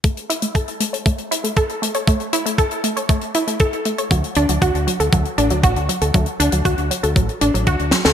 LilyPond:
<<
  \new Staff \with { instrumentName = "Synth arpeggio sound" } { \time 4/4 \key a \major \tempo 4 = 118 a16 r16 e'16 a16 a'16 r16 a16 cis''16 a16 r16 e'16 a16 a'16 r16 a16 cis''16 | a16 r16 e'16 a16 a'16 r16 a16 cis''16 a16 r16 e'16 a16 a'16 r16 a16 cis''16 | fis16 r16 d'16 fis16 fis'16 r16 fis16 a'16 fis16 r16 d'16 fis16 fis'16 r16 fis16 a'16 | fis16 r16 d'16 fis16 fis'16 r16 fis16 a'16 fis16 r16 d'16 fis16 fis'16 r16 fis16 a'16 | }
  \new Staff \with { instrumentName = "Fingered electric bass" } { \clef bass \time 4/4 \key a \major r1 | r1 | d,16 r16 d,16 d,16 d,16 d,16 r16 d,16 d,16 r16 a,,16 d,16 a,,16 d,16 r16 d,16 | d,16 r16 d,16 d,16 d,16 d,16 r16 d,16 a,,16 r16 a,,16 a,,16 d,16 d,16 r16 d,16 | }
  \new DrumStaff \with { instrumentName = "Drums" } \drummode { \time 4/4 <hh bd>16 hh16 hh16 hh16 <hh bd>16 hh16 hh16 hh16 <hh bd>16 hh16 hh16 hh16 <hh bd>16 hh16 hh16 hh16 | <hh bd>16 hh16 hh16 hh16 <hh bd>16 hh16 hh16 hh16 <hh bd>16 hh16 hh16 hh16 <hh bd>16 hh16 hh16 hh16 | <hh bd>16 hh16 hh16 hh16 <hh bd>16 hh16 hh16 hh16 <hh bd>16 hh16 hh16 hh16 <hh bd>16 hh16 hh16 hh16 | <hh bd>16 hh16 hh16 hh16 <hh bd>16 hh16 hh16 hh16 <hh bd>16 hh16 hh16 hh16 <hh bd>16 hh16 <hh sn>16 <hh sn>16 | }
>>